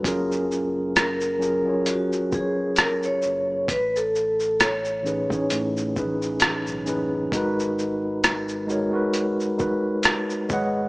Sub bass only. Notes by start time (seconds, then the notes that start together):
0.05 F#1
3.24 F#1
3.69 A1
5.52 A2
5.97 A1
6.67 B1
6.88 F#1
7.33 G#1
10.50 G#1